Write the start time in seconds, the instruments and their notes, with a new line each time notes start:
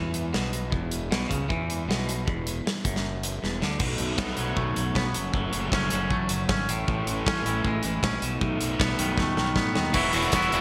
Already playing: fingered electric bass E2, clean electric guitar E3
0.14 overdriven electric guitar E3 G#3 B3 E4, closed hi-hat
0.33 fingered electric bass B1, clean electric guitar B2, overdriven electric guitar E3 G#3 B3 E4, snare
0.53 closed hi-hat
0.71 fingered electric bass E1, clean electric guitar E2, kick
0.91 overdriven electric guitar E3 G#3 B3 E4, closed hi-hat
1.11 fingered electric bass B1, clean electric guitar B2, overdriven electric guitar E3 G#3 B3 E4, snare
1.29 fingered electric bass C#2, clean electric guitar C#3, kick, closed hi-hat
1.49 fingered electric bass E2, clean electric guitar E3, kick
1.69 overdriven electric guitar E3 G#3 B3 E4, closed hi-hat
1.88 fingered electric bass B1, clean electric guitar B2, overdriven electric guitar E3 G#3 B3 E4, snare
2.09 closed hi-hat
2.26 fingered electric bass E1, clean electric guitar E2, kick
2.45 overdriven electric guitar E3 G#3 B3 E4, closed hi-hat
2.64 overdriven electric guitar E3 G#3 B3 E4, muted fingered electric bass stroke, muted clean electric guitar stroke, snare
2.85 fingered electric bass F#1, clean electric guitar F#2, kick, closed hi-hat
2.96 snare
3.23 overdriven electric guitar E3 G#3 B3 E4, closed hi-hat
3.41 fingered electric bass E1, clean electric guitar E2, overdriven electric guitar E3 G#3 B3 E4, snare
3.62 fingered electric bass D2, clean electric guitar D3, snare
3.79 fingered electric bass B1, overdriven electric guitar B2 F#3 A3 D#4, clean electric guitar B2, kick, crash
3.98 fingered electric bass B1, closed hi-hat
4.18 fingered electric bass B1, clean electric guitar B3, kick, snare
4.37 fingered electric bass B1, clean electric guitar F#3, closed hi-hat
4.56 fingered electric bass B1, clean electric guitar A3, kick
4.76 fingered electric bass B1, clean electric guitar F#3, closed hi-hat
4.95 fingered electric bass B1, clean electric guitar B3, kick, snare
5.14 fingered electric bass F#1, overdriven electric guitar F#2 C#3 F#3 A3 C#4, clean electric guitar F#3, closed hi-hat
5.34 fingered electric bass F#1, clean electric guitar F#3, kick
5.53 fingered electric bass F#1, closed hi-hat
5.72 fingered electric bass F#1, clean electric guitar C#4, kick, snare
5.90 fingered electric bass F#1, clean electric guitar F#3, closed hi-hat
6.10 fingered electric bass A1, clean electric guitar A3, kick
6.29 fingered electric bass F#1, clean electric guitar F#3, closed hi-hat
6.49 fingered electric bass G#1, clean electric guitar C#4, kick, snare
6.69 fingered electric bass A1, overdriven electric guitar A2 E3 A3 C#4 E4, clean electric guitar A2, closed hi-hat
6.87 fingered electric bass A1, clean electric guitar A2, kick
7.06 fingered electric bass A1, closed hi-hat
7.26 fingered electric bass A1, clean electric guitar C#4, kick, snare
7.46 fingered electric bass A1, clean electric guitar E3, closed hi-hat
7.65 fingered electric bass A1, clean electric guitar G#3, kick
7.83 fingered electric bass A1, clean electric guitar E3, closed hi-hat
8.03 fingered electric bass A#1, clean electric guitar C#4, kick, snare
8.22 fingered electric bass B1, overdriven electric guitar B2 F#3 A3 D#4, clean electric guitar B2, closed hi-hat
8.41 fingered electric bass B1, clean electric guitar B2, kick
8.61 fingered electric bass B1, closed hi-hat
8.79 fingered electric bass B1, clean electric guitar B3, kick, snare
8.99 fingered electric bass B1, clean electric guitar D#3, closed hi-hat
9.18 fingered electric bass D#2, clean electric guitar A3, kick, snare
9.37 fingered electric bass B1, clean electric guitar D#3, snare
9.56 fingered electric bass A2, clean electric guitar B3, kick, snare
9.74 fingered electric bass D#2, clean electric guitar D#3, snare
9.92 fingered electric bass E1, clean electric guitar E2 E3 F#3 B3 E4 F#4, overdriven electric guitar E3 F#3, kick, crash
9.97 overdriven electric guitar B3 E4
10.12 fingered electric bass E1, clean electric guitar E2 E3 F#3 B3 E4 F#4, overdriven electric guitar E3 F#3 B3 E4, closed hi-hat
10.22 closed hi-hat
10.32 fingered electric bass E1, clean electric guitar E2 E3 F#3 B3 E4 F#4, overdriven electric guitar E3 F#3 B3 E4, kick, snare, closed hi-hat
10.42 closed hi-hat
10.52 fingered electric bass E1, clean electric guitar E2 E3 F#3 B3 E4 F#4, overdriven electric guitar E3 F#3 B3 E4, closed hi-hat